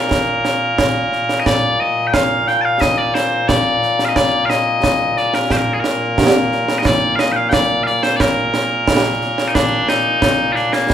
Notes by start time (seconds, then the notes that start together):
Already playing: A#2 A#3 A#4
0.11 concert bass drum, snare
0.45 snare
0.78 concert bass drum, snare
1.12 snare
1.29 snare
1.40 D#5
1.46 D5, concert bass drum, snare
1.80 D#5
2.07 G5
2.14 F5, concert bass drum, snare
2.48 G5, snare
2.61 F5 A5
2.81 D#5, concert bass drum, snare
2.98 D5
3.14 C5, snare
3.48 D5, concert bass drum, snare
3.82 snare
3.99 snare
4.05 D#5 F5
4.16 D5, concert bass drum, snare
4.46 F5
4.50 D#5, snare
4.84 concert bass drum, snare
5.17 D5, snare
5.34 A#4, snare
5.50 C5, concert bass drum, snare
5.57 A#4
5.74 G#4
5.80 A#4
5.84 snare
6.18 concert bass drum, snare
6.52 snare
6.68 snare
6.78 D#5
6.85 D5, concert bass drum, snare
7.16 D#5 F5, snare
7.32 F5 G5
7.49 G5, concert bass drum, snare
7.53 D5
7.83 D5 F5, snare
8.03 C5, snare
8.16 D5, concert bass drum, snare
8.21 A#4
8.54 snare
8.88 concert bass drum, snare
9.21 snare
9.38 snare
9.48 D#4
9.55 D4, concert bass drum, snare
9.88 D#4, snare
10.22 concert bass drum, snare
10.53 D4 F4, snare
10.73 A#3, snare
10.90 concert bass drum, snare